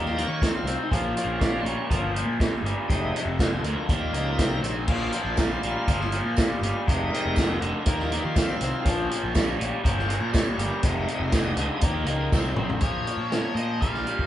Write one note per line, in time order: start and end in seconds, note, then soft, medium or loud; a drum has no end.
0.00 0.24 D#2 loud
0.00 0.14 D#3 medium
0.00 0.24 F3 medium
0.00 0.24 G3 soft
0.00 0.14 A#3 medium
0.00 0.25 D#4 medium
0.06 snare soft
0.16 0.39 D#3 medium
0.16 0.40 A#3 medium
0.16 0.28 A#4 medium
0.16 closed hi-hat medium
0.28 0.49 D#3 medium
0.28 0.52 C#5 medium
0.42 0.64 D#3 medium
0.42 0.64 C4 medium
0.42 kick loud
0.42 snare loud
0.42 closed hi-hat medium
0.55 0.78 F4 medium
0.64 0.75 C2 medium
0.64 0.88 D#3 medium
0.64 0.89 C4 medium
0.64 closed hi-hat medium
0.83 0.92 D#4 medium
0.91 1.12 A#1 loud
0.91 1.13 A#2 medium
0.91 1.13 F3 medium
0.91 1.62 F3 medium
0.91 1.62 A#3 soft
0.91 1.64 C#4 medium
0.91 kick loud
0.91 closed hi-hat medium
1.17 1.39 A#2 medium
1.17 1.39 F3 medium
1.17 closed hi-hat medium
1.25 1.58 A#1 loud
1.41 1.63 A#2 medium
1.41 1.63 G3 loud
1.41 kick loud
1.41 snare loud
1.41 closed hi-hat medium
1.62 1.75 A#1 medium
1.62 1.88 A#2 medium
1.62 1.65 C4 medium
1.62 1.89 C#4 loud
1.66 1.88 G3 medium
1.66 closed hi-hat medium
1.90 2.22 G1 loud
1.90 2.12 A#2 medium
1.90 2.13 F3 medium
1.90 2.14 F3 soft
1.90 2.14 A#3 soft
1.90 2.14 C#4 medium
1.90 kick loud
1.90 closed hi-hat loud
2.15 2.37 A#2 medium
2.15 2.37 F3 medium
2.15 closed hi-hat medium
2.26 2.48 A#2 medium
2.40 2.62 A#2 medium
2.40 2.62 G3 medium
2.40 kick loud
2.40 snare loud
2.40 closed hi-hat medium
2.62 2.74 G1 medium
2.62 2.87 A#2 medium
2.62 2.87 G3 medium
2.62 closed hi-hat medium
2.88 3.11 F1 loud
2.88 3.12 F2 medium
2.88 3.12 C3 medium
2.88 3.22 G3 medium
2.88 3.22 G#3 soft
2.88 3.22 D#4 medium
2.88 kick loud
2.88 closed hi-hat medium
3.14 3.36 F2 medium
3.14 3.37 C3 medium
3.14 closed hi-hat medium
3.25 3.58 F1 loud
3.39 3.62 F2 medium
3.39 3.62 D3 medium
3.39 3.51 F4 loud
3.39 kick loud
3.39 snare loud
3.39 closed hi-hat loud
3.53 3.64 G#4 medium
3.59 3.74 D2 medium
3.59 3.62 A4 medium
3.64 3.87 F2 medium
3.64 3.87 D3 medium
3.64 4.60 A#4 medium
3.64 closed hi-hat medium
3.88 4.10 D#2 loud
3.88 4.12 D#3 medium
3.88 4.60 F3 medium
3.88 4.60 G3 soft
3.88 4.12 A#3 medium
3.88 4.61 D#4 medium
3.88 kick loud
3.88 closed hi-hat loud
4.13 4.35 C#2 medium
4.13 4.36 D#3 medium
4.13 4.36 A#3 medium
4.13 closed hi-hat medium
4.38 4.61 C2 medium
4.38 4.60 D#3 medium
4.38 4.61 C4 medium
4.38 kick loud
4.38 snare loud
4.38 closed hi-hat loud
4.62 4.85 A#1 medium
4.62 4.85 D#3 medium
4.62 4.85 C4 medium
4.62 4.74 C#5 medium
4.62 closed hi-hat medium
4.74 4.99 G#4 medium
4.87 5.09 A#1 loud
4.87 5.10 A#2 medium
4.87 5.10 F3 medium
4.87 5.21 F3 medium
4.87 5.21 A#3 soft
4.87 5.21 C#4 medium
4.87 kick loud
4.87 crash medium
4.98 5.35 F4 medium
5.11 5.34 A#2 medium
5.11 5.35 F3 medium
5.11 closed hi-hat medium
5.25 5.57 A#1 loud
5.32 5.35 E4 medium
5.36 5.60 A#2 medium
5.36 5.60 G3 medium
5.36 6.82 F4 medium
5.36 kick loud
5.36 snare loud
5.36 closed hi-hat medium
5.36 tambourine medium
5.63 5.74 A#1 medium
5.63 5.85 A#2 medium
5.63 5.86 G3 medium
5.63 closed hi-hat medium
5.87 6.19 G1 loud
5.87 6.10 A#2 medium
5.87 6.10 F3 loud
5.87 kick loud
5.87 closed hi-hat medium
6.00 snare soft
6.12 6.34 A#2 medium
6.12 6.35 F3 medium
6.12 closed hi-hat medium
6.24 6.46 A#2 medium
6.37 6.59 A#2 medium
6.37 6.59 G3 medium
6.37 kick loud
6.37 snare loud
6.37 closed hi-hat loud
6.37 tambourine loud
6.61 6.72 G1 medium
6.61 6.85 A#2 medium
6.61 6.85 G3 medium
6.61 closed hi-hat medium
6.87 7.09 F1 loud
6.87 7.09 F2 medium
6.87 7.10 C3 medium
6.87 7.57 G3 medium
6.87 7.58 G#3 soft
6.87 7.58 D#4 medium
6.87 kick loud
6.87 closed hi-hat medium
7.10 7.35 F2 medium
7.10 7.35 C3 medium
7.10 7.83 A#4 loud
7.10 closed hi-hat medium
7.25 7.57 F1 loud
7.36 7.60 F2 medium
7.36 7.60 D3 medium
7.36 kick loud
7.36 snare loud
7.36 closed hi-hat medium
7.36 tambourine loud
7.61 7.72 F1 medium
7.61 7.83 F2 medium
7.61 7.84 D3 medium
7.61 closed hi-hat medium
7.86 8.18 D#2 loud
7.86 8.09 D#3 medium
7.86 8.57 F3 medium
7.86 8.57 G3 soft
7.86 8.09 A#3 loud
7.86 8.12 D#4 medium
7.86 8.11 A#4 medium
7.86 kick loud
7.86 closed hi-hat loud
7.99 snare soft
8.12 8.34 D#3 medium
8.12 8.34 A#3 medium
8.12 8.24 D#4 medium
8.12 closed hi-hat medium
8.20 8.23 E4 medium
8.24 8.46 D#3 medium
8.24 8.84 F4 medium
8.36 8.58 D#3 medium
8.36 8.59 C4 medium
8.36 kick loud
8.36 snare loud
8.36 closed hi-hat loud
8.36 tambourine medium
8.61 8.72 C2 medium
8.61 8.83 D#3 medium
8.61 8.84 C4 medium
8.61 closed hi-hat medium
8.82 9.07 A#1 loud
8.82 9.08 A#2 medium
8.82 9.07 F3 medium
8.82 9.08 F3 loud
8.82 9.09 A#3 loud
8.82 10.79 C#4 medium
8.82 kick loud
8.82 closed hi-hat loud
9.10 9.32 A#2 medium
9.10 9.33 F3 medium
9.10 closed hi-hat medium
9.24 9.55 A#1 loud
9.35 9.57 A#2 medium
9.35 9.57 G3 medium
9.35 kick loud
9.35 snare loud
9.35 closed hi-hat medium
9.35 tambourine medium
9.58 9.71 A#1 medium
9.58 9.81 A#2 medium
9.58 9.82 G3 medium
9.58 closed hi-hat medium
9.83 10.17 G1 loud
9.83 10.06 A#2 medium
9.83 10.06 F3 loud
9.83 kick loud
9.83 closed hi-hat medium
9.99 snare soft
10.05 10.31 A#2 medium
10.05 10.31 F3 medium
10.05 10.08 A4 medium
10.05 10.33 A#4 medium
10.10 closed hi-hat medium
10.20 10.42 A#2 medium
10.30 10.56 A#2 medium
10.30 10.56 G3 loud
10.30 10.33 C5 medium
10.30 tambourine medium
10.34 10.59 C#5 loud
10.34 kick loud
10.34 snare loud
10.34 closed hi-hat medium
10.58 10.69 G1 loud
10.58 10.81 A#2 medium
10.58 10.81 G3 medium
10.58 11.08 A#4 medium
10.58 closed hi-hat medium
10.83 11.05 F1 loud
10.83 11.06 F2 medium
10.83 11.06 C3 loud
10.83 11.79 G3 medium
10.83 11.80 G#3 medium
10.83 11.80 D#4 medium
10.83 kick loud
10.83 closed hi-hat loud
11.07 11.30 F2 medium
11.07 11.30 C3 medium
11.07 closed hi-hat medium
11.12 11.22 D#5 medium
11.19 11.52 F1 loud
11.19 11.21 E5 medium
11.23 11.34 F5 medium
11.32 11.56 F2 medium
11.32 11.56 D3 loud
11.32 12.30 D#5 loud
11.32 kick loud
11.32 snare loud
11.32 closed hi-hat loud
11.32 tambourine medium
11.56 11.68 C#2 medium
11.56 11.80 F2 medium
11.56 11.80 D3 medium
11.56 closed hi-hat medium
11.81 12.04 D#2 loud
11.81 12.05 D#3 medium
11.81 12.79 F3 medium
11.81 12.79 G3 soft
11.81 12.05 A#3 loud
11.81 kick loud
11.81 closed hi-hat loud
11.86 12.80 D#4 medium
12.04 12.28 C#2 medium
12.04 12.30 D#3 medium
12.04 12.30 A#3 medium
12.04 closed hi-hat medium
12.32 12.55 C2 medium
12.32 12.55 D#3 medium
12.32 12.56 C4 loud
12.32 kick loud
12.32 snare medium
12.32 tambourine medium
12.56 12.79 A#1 medium
12.56 12.80 D#3 medium
12.56 12.80 C4 medium
12.56 mid tom medium
12.70 floor tom medium
12.81 13.04 A#1 medium
12.81 13.05 A#2 medium
12.81 13.06 F3 medium
12.81 13.29 C#5 medium
12.81 kick loud
12.81 closed hi-hat medium
13.06 13.29 A#2 medium
13.06 13.30 F3 medium
13.06 closed hi-hat medium
13.17 13.40 A#2 medium
13.31 13.54 A#2 medium
13.31 13.54 F3 medium
13.31 13.55 C#5 medium
13.31 snare loud
13.31 closed hi-hat medium
13.55 13.77 A#2 medium
13.55 13.79 A#2 medium
13.55 13.79 F3 medium
13.55 13.82 D#5 medium
13.55 closed hi-hat medium
13.81 14.03 A#1 medium
13.81 14.04 A#2 medium
13.81 14.04 G3 medium
13.81 14.27 F5 medium
13.81 kick loud
13.81 closed hi-hat medium
13.94 snare soft
14.06 14.27 A#2 medium
14.06 14.27 G3 medium
14.06 closed hi-hat medium
14.19 14.27 G1 medium
14.19 kick medium